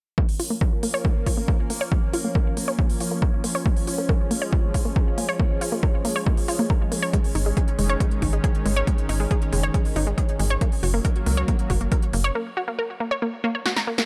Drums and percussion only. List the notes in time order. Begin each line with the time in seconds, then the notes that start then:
0.18 kick
0.29 open hi-hat
0.40 open hi-hat
0.61 kick
0.83 open hi-hat
1.05 kick
1.26 kick, open hi-hat
1.48 kick
1.70 open hi-hat
1.92 kick
2.13 open hi-hat
2.35 kick
2.57 open hi-hat
2.79 kick
2.90 open hi-hat
3.00 open hi-hat
3.22 kick
3.44 open hi-hat
3.66 kick
3.77 open hi-hat
3.87 open hi-hat
4.09 kick
4.31 open hi-hat
4.53 kick
4.74 kick, open hi-hat
4.96 kick
5.18 open hi-hat
5.40 kick
5.61 open hi-hat
5.83 kick
6.05 open hi-hat
6.27 kick
6.37 open hi-hat
6.48 open hi-hat
6.70 kick
6.92 open hi-hat
7.13 kick, closed hi-hat
7.24 open hi-hat
7.35 open hi-hat
7.57 kick, closed hi-hat
7.68 closed hi-hat
7.79 open hi-hat
7.90 closed hi-hat
8.00 kick, closed hi-hat
8.11 closed hi-hat
8.22 kick, open hi-hat
8.33 closed hi-hat
8.44 kick, closed hi-hat
8.55 closed hi-hat
8.66 open hi-hat
8.76 closed hi-hat
8.87 kick, closed hi-hat
8.98 closed hi-hat
9.09 open hi-hat
9.31 kick, closed hi-hat
9.42 closed hi-hat
9.53 open hi-hat
9.63 closed hi-hat
9.74 kick, closed hi-hat
9.85 open hi-hat
9.96 open hi-hat
10.07 closed hi-hat
10.18 kick, closed hi-hat
10.29 closed hi-hat
10.39 open hi-hat
10.50 closed hi-hat
10.61 kick, closed hi-hat
10.72 open hi-hat
10.83 open hi-hat
11.05 kick, closed hi-hat
11.16 closed hi-hat
11.26 open hi-hat
11.37 closed hi-hat
11.48 kick, closed hi-hat
11.59 closed hi-hat
11.70 kick, open hi-hat
11.81 closed hi-hat
11.92 kick, closed hi-hat
12.02 closed hi-hat
12.13 open hi-hat
12.24 closed hi-hat
13.66 snare
13.76 snare
13.98 snare